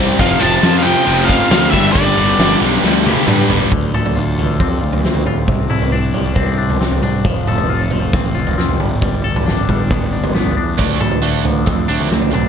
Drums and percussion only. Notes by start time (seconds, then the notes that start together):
0.19 kick, ride
0.41 ride
0.63 snare, ride
0.74 snare
0.85 ride
1.07 ride
1.29 kick, ride
1.51 snare, ride
1.73 kick, ride
1.95 kick, ride
2.17 ride
2.39 snare, ride
2.62 ride
2.84 snare
3.06 high tom
3.17 high tom
3.28 mid tom
3.50 floor tom
3.61 floor tom
3.72 kick, floor tom
3.94 mid tom
4.06 floor tom
4.39 floor tom
4.60 kick, floor tom
4.93 floor tom
5.04 snare
5.15 floor tom
5.26 mid tom
5.48 kick, floor tom
5.70 mid tom
5.82 floor tom
6.14 floor tom
6.36 kick, floor tom
6.70 floor tom
6.81 snare
6.92 floor tom
7.03 mid tom
7.25 kick, floor tom
7.47 mid tom
7.58 floor tom
7.91 floor tom
8.13 kick, floor tom
8.47 floor tom
8.58 snare
8.69 floor tom
8.80 mid tom
9.02 kick, floor tom
9.14 floor tom
9.36 floor tom, mid tom
9.48 snare
9.69 kick, floor tom, mid tom
9.91 kick, floor tom
10.02 floor tom
10.24 floor tom
10.35 snare
10.46 floor tom
10.78 kick, floor tom
11.01 mid tom
11.11 floor tom
11.45 floor tom
11.67 kick, floor tom
12.00 floor tom
12.12 snare
12.22 floor tom
12.34 mid tom